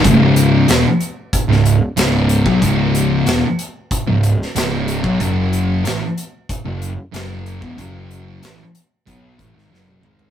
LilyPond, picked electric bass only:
\new Staff \with { instrumentName = "Picked electric bass" } { \clef bass \time 4/4 \key cis \minor \tempo 4 = 93 cis,,4 e,,16 r4 cis,,8 r16 cis,,8. b,,16 | cis,,4 e,,16 r4 cis,,8 r16 cis,,8. b,,16 | fis,,4 a,,16 r4 fis,,8 r16 fis,,8. e,,16 | fis,,4 a,,16 r8. b,,8 a,,16 gis,,16 fis,,8 gis,,8 | }